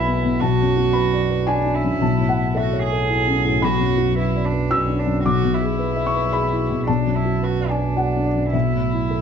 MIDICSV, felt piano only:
0, 0, Header, 1, 2, 480
1, 0, Start_track
1, 0, Tempo, 538600
1, 364, Time_signature, 3, 2, 24, 8
1, 6125, Tempo, 559180
1, 8135, End_track
2, 0, Start_track
2, 0, Title_t, "Felt piano"
2, 0, Program_c, 0, 0
2, 0, Control_c, 0, 64, 127
2, 0, Note_on_c, 0, 35, 68
2, 0, Note_on_c, 0, 47, 57
2, 0, Note_on_c, 0, 64, 55
2, 0, Note_on_c, 0, 71, 58
2, 0, Note_on_c, 0, 76, 87
2, 0, Note_on_c, 0, 78, 87
2, 0, Note_on_c, 0, 80, 84
2, 0, Note_on_c, 0, 83, 97
2, 54, Note_on_c, 0, 59, 49
2, 144, Note_off_c, 0, 64, 0
2, 218, Note_off_c, 0, 47, 0
2, 218, Note_on_c, 0, 47, 54
2, 304, Note_off_c, 0, 59, 0
2, 322, Note_off_c, 0, 83, 0
2, 327, Note_off_c, 0, 35, 0
2, 365, Note_on_c, 0, 81, 91
2, 370, Note_off_c, 0, 47, 0
2, 372, Note_on_c, 0, 35, 66
2, 378, Control_c, 0, 64, 0
2, 380, Note_off_c, 0, 80, 0
2, 383, Note_off_c, 0, 76, 0
2, 385, Note_off_c, 0, 71, 0
2, 387, Note_off_c, 0, 78, 0
2, 525, Control_c, 0, 64, 127
2, 549, Note_on_c, 0, 42, 50
2, 789, Note_off_c, 0, 42, 0
2, 807, Note_off_c, 0, 81, 0
2, 830, Note_on_c, 0, 83, 85
2, 841, Note_on_c, 0, 71, 56
2, 1008, Note_on_c, 0, 74, 56
2, 1095, Note_off_c, 0, 71, 0
2, 1159, Note_on_c, 0, 71, 57
2, 1258, Note_off_c, 0, 74, 0
2, 1279, Note_off_c, 0, 83, 0
2, 1307, Note_on_c, 0, 80, 96
2, 1311, Note_on_c, 0, 66, 55
2, 1413, Note_off_c, 0, 71, 0
2, 1476, Note_on_c, 0, 62, 54
2, 1569, Note_off_c, 0, 66, 0
2, 1638, Note_on_c, 0, 42, 50
2, 1731, Note_off_c, 0, 62, 0
2, 1756, Note_off_c, 0, 80, 0
2, 1764, Note_off_c, 0, 35, 0
2, 1794, Note_on_c, 0, 35, 63
2, 1796, Note_off_c, 0, 42, 0
2, 1797, Note_on_c, 0, 81, 75
2, 1809, Control_c, 0, 64, 0
2, 1946, Note_on_c, 0, 45, 54
2, 1957, Control_c, 0, 64, 127
2, 2018, Note_off_c, 0, 81, 0
2, 2038, Note_on_c, 0, 78, 86
2, 2205, Note_off_c, 0, 45, 0
2, 2259, Note_off_c, 0, 78, 0
2, 2265, Note_on_c, 0, 69, 58
2, 2283, Note_on_c, 0, 76, 78
2, 2430, Note_on_c, 0, 73, 51
2, 2526, Note_off_c, 0, 69, 0
2, 2603, Note_on_c, 0, 69, 59
2, 2689, Note_off_c, 0, 73, 0
2, 2752, Note_on_c, 0, 64, 53
2, 2856, Note_off_c, 0, 69, 0
2, 2912, Note_on_c, 0, 61, 54
2, 2964, Note_off_c, 0, 76, 0
2, 3010, Note_off_c, 0, 64, 0
2, 3072, Note_on_c, 0, 45, 51
2, 3169, Note_off_c, 0, 61, 0
2, 3199, Note_off_c, 0, 35, 0
2, 3228, Note_on_c, 0, 83, 99
2, 3229, Note_on_c, 0, 35, 67
2, 3234, Note_off_c, 0, 45, 0
2, 3253, Control_c, 0, 64, 0
2, 3368, Control_c, 0, 64, 127
2, 3387, Note_on_c, 0, 42, 53
2, 3542, Note_on_c, 0, 66, 59
2, 3648, Note_off_c, 0, 42, 0
2, 3707, Note_on_c, 0, 71, 57
2, 3805, Note_off_c, 0, 66, 0
2, 3877, Note_on_c, 0, 74, 51
2, 3968, Note_off_c, 0, 71, 0
2, 4034, Note_on_c, 0, 71, 52
2, 4132, Note_off_c, 0, 74, 0
2, 4156, Note_off_c, 0, 83, 0
2, 4192, Note_on_c, 0, 66, 52
2, 4195, Note_on_c, 0, 88, 104
2, 4290, Note_off_c, 0, 71, 0
2, 4354, Note_on_c, 0, 62, 54
2, 4449, Note_off_c, 0, 66, 0
2, 4511, Note_on_c, 0, 42, 52
2, 4610, Note_off_c, 0, 62, 0
2, 4636, Note_off_c, 0, 35, 0
2, 4641, Note_off_c, 0, 88, 0
2, 4673, Note_off_c, 0, 42, 0
2, 4676, Note_on_c, 0, 35, 64
2, 4685, Note_on_c, 0, 86, 87
2, 4693, Control_c, 0, 64, 0
2, 4815, Control_c, 0, 64, 127
2, 4845, Note_on_c, 0, 47, 51
2, 4999, Note_on_c, 0, 68, 54
2, 5098, Note_off_c, 0, 47, 0
2, 5158, Note_on_c, 0, 71, 56
2, 5256, Note_off_c, 0, 68, 0
2, 5313, Note_on_c, 0, 76, 53
2, 5369, Note_off_c, 0, 86, 0
2, 5404, Note_on_c, 0, 85, 84
2, 5416, Note_off_c, 0, 71, 0
2, 5483, Note_on_c, 0, 71, 56
2, 5573, Note_off_c, 0, 76, 0
2, 5626, Note_off_c, 0, 85, 0
2, 5639, Note_on_c, 0, 83, 93
2, 5645, Note_on_c, 0, 68, 55
2, 5738, Note_off_c, 0, 71, 0
2, 5809, Note_on_c, 0, 64, 50
2, 5899, Note_off_c, 0, 68, 0
2, 5971, Note_on_c, 0, 47, 48
2, 6062, Note_off_c, 0, 64, 0
2, 6088, Note_off_c, 0, 35, 0
2, 6088, Note_off_c, 0, 83, 0
2, 6124, Note_on_c, 0, 81, 91
2, 6128, Note_off_c, 0, 47, 0
2, 6135, Note_on_c, 0, 35, 63
2, 6140, Control_c, 0, 64, 0
2, 6265, Control_c, 0, 64, 127
2, 6287, Note_on_c, 0, 42, 46
2, 6445, Note_on_c, 0, 66, 49
2, 6533, Note_off_c, 0, 42, 0
2, 6596, Note_on_c, 0, 71, 48
2, 6690, Note_off_c, 0, 66, 0
2, 6744, Note_on_c, 0, 74, 41
2, 6793, Note_off_c, 0, 81, 0
2, 6827, Note_on_c, 0, 80, 62
2, 6845, Note_off_c, 0, 71, 0
2, 6901, Note_on_c, 0, 71, 47
2, 7000, Note_off_c, 0, 74, 0
2, 7049, Note_off_c, 0, 80, 0
2, 7062, Note_on_c, 0, 66, 44
2, 7064, Note_on_c, 0, 78, 67
2, 7160, Note_off_c, 0, 71, 0
2, 7230, Note_on_c, 0, 62, 39
2, 7290, Note_off_c, 0, 78, 0
2, 7298, Note_on_c, 0, 74, 61
2, 7322, Note_off_c, 0, 66, 0
2, 7395, Note_on_c, 0, 42, 39
2, 7489, Note_off_c, 0, 62, 0
2, 7524, Note_off_c, 0, 35, 0
2, 7530, Note_off_c, 0, 74, 0
2, 7546, Note_on_c, 0, 35, 45
2, 7548, Note_on_c, 0, 76, 56
2, 7555, Note_off_c, 0, 42, 0
2, 7568, Control_c, 0, 64, 0
2, 7717, Note_on_c, 0, 45, 36
2, 7720, Control_c, 0, 64, 127
2, 7886, Note_on_c, 0, 64, 40
2, 7977, Note_off_c, 0, 45, 0
2, 8038, Note_on_c, 0, 69, 42
2, 8135, Note_off_c, 0, 35, 0
2, 8135, Note_off_c, 0, 64, 0
2, 8135, Note_off_c, 0, 69, 0
2, 8135, Note_off_c, 0, 76, 0
2, 8135, End_track
0, 0, End_of_file